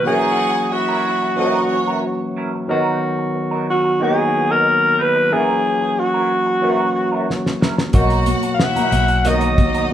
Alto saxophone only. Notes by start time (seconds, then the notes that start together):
0.07 G#4
0.73 F#4
3.70 F#4
4.03 G#4
4.51 A#4
5.01 B4
5.33 G#4
5.99 F#4
8.54 F5
8.63 F#5
9.27 D#5